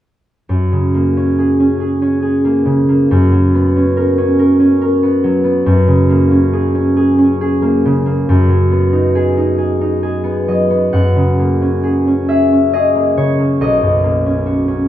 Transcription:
0.49 F#2
0.72 C#3
0.94 A#3
1.17 C#4
1.38 G#4
1.60 C#4
1.80 G#4
2.02 C#4
2.22 G#4
2.45 A#3
2.65 C#3
2.89 A#3
3.11 F#2
3.32 F#3
3.54 B3
3.76 C#4
3.97 A#4
4.18 C#4
4.39 A#4
4.60 C#4
4.82 A#4
5.03 B3
5.24 F#3
5.44 B3
5.66 F#2
5.87 C#3
6.09 A#3
6.31 C#4
6.53 G#4
6.75 C#4
6.97 G#4
7.18 C#4
7.41 G#4
7.62 A#3
7.85 C#3
8.06 A#3
8.29 F#2
8.49 F#3
8.71 B3
8.93 D#4
9.15 G#4
9.37 D#4
9.58 G#4
9.81 D#4
10.03 G#4
10.24 B3
10.48 F#3 D#5
10.70 B3
10.93 F#2 F#5
11.16 C#3
11.39 A#3
11.62 C#4
11.83 G#4
12.07 C#4
12.29 G#4 E5
12.52 C#4
12.73 G#4 D#5
12.95 A#3
13.17 C#3 C#5
13.39 A#3
13.61 B1 D#5
13.82 F#2
14.04 A#3
14.26 C#4
14.46 F#4
14.68 C#4

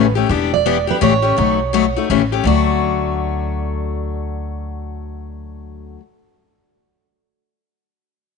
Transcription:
Already playing: A1 B4
0.15 A3 C#4 G4
0.29 E1 E3 B3 D4 G4
0.54 D5
0.66 E3 B3 D4 G4
0.87 B3 D4 G4 B4
1.01 A1 C#3 E3 A3 C#4 G4 C#5
1.22 A3 C#4 G4
1.37 B1 B2 F#3 A3 D#4 F#4
1.73 B2 F#3 A3 D#4 F#4
1.96 A3 D#4 F#4
2.10 A1 C#3 E3 A3 C#4 G4
2.32 A3 C#4 G4
2.44 D2 D3 F#3 A3 F#4 D5

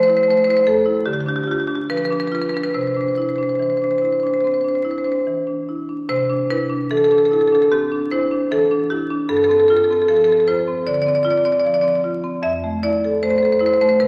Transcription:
Already playing: F3 A3
0.03 C5
0.08 E4 C5
0.17 C5
0.23 C5
0.28 A3 C5
0.37 C5
0.44 E4 C5
0.50 C5
0.57 C5
0.67 A3 A4
0.85 E4
1.06 D3 G4
1.13 G4
1.21 G4
1.26 D4 G4
1.36 G4
1.44 F4 G4
1.52 G4
1.60 G4
1.67 D4 G4
1.75 G4
1.90 F3 B4
1.97 B4
2.05 B4
2.10 D4 B4
2.20 B4
2.27 B4
2.32 F4 B4
2.42 B4
2.49 B4
2.54 D4 B4
2.64 B4
2.74 C3 C5
2.81 C5
2.87 C5
2.95 D4 C5
3.01 C5
3.08 C5
3.15 E4 C5
3.22 C5
3.29 C5
3.36 D4 C5
3.43 C5
3.49 C5
3.55 C5
3.60 E3 C5
3.70 C5
3.77 C5
3.82 D4 C5
3.91 C5
3.98 E4 C5
4.05 C5
4.12 C5
4.20 D4 C5
4.27 C5
4.34 C5
4.41 C4 C5
4.47 C5
4.54 C5
4.61 D4 C5
4.68 C5
4.75 C5
4.83 E4 C5
4.91 C5
4.98 C5
5.04 D4 C5
5.12 C5
5.27 E3
5.47 D4
5.69 E4
5.89 D4
6.09 C3 C5
6.30 D4
6.50 E4 B4
6.70 D4
6.91 E3 A4
6.97 A4
7.04 A4
7.11 D4 A4
7.18 A4
7.25 A4
7.31 E4 A4
7.41 A4
7.47 A4
7.52 D4 A4
7.62 A4
7.71 C4 G4
7.92 D4
8.11 E4 C5
8.31 D4
8.51 E3 A4
8.71 D4
8.90 E4 G4
9.10 D4
9.29 G2 A4
9.37 A4
9.44 A4
9.49 C4 A4
9.60 A4
9.68 F4 A4
9.77 A4
9.84 A4
9.91 C4 A4
10.02 A4
10.08 F3 A4
10.16 A4
10.24 A4
10.28 C4
10.32 A4
10.40 A4
10.48 F4 C5
10.68 C4
10.87 D3 D5
10.94 D5
11.02 D5
11.07 C4 D5
11.15 D5
11.23 F4 D5
11.30 D5
11.37 D5
11.45 C4 D5
11.52 D5
11.60 D5
11.65 F3 D5
11.74 D5
11.81 C4 D5
11.88 D5
11.96 D5
12.04 F4
12.24 C4
12.42 F2 E5
12.64 A3
12.83 E4 D5
13.04 A4
13.23 A3 C5
13.31 C5
13.38 C5
13.43 A4 C5
13.52 C5
13.59 E4 C5
13.66 C5
13.74 C5
13.81 A3 C5
13.89 C5
14.00 C3 B4

